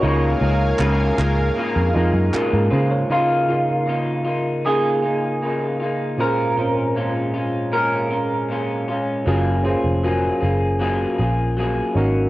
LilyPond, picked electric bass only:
\new Staff \with { instrumentName = "Picked electric bass" } { \clef bass \time 4/4 \key des \major \tempo 4 = 78 des,8 des,8 des,8 des,8 r16 f,16 f,16 ges,16 r16 aes,16 des8 | r1 | r1 | ges,,8. f,,8. ges,,4 bes,,4 aes,,8 | }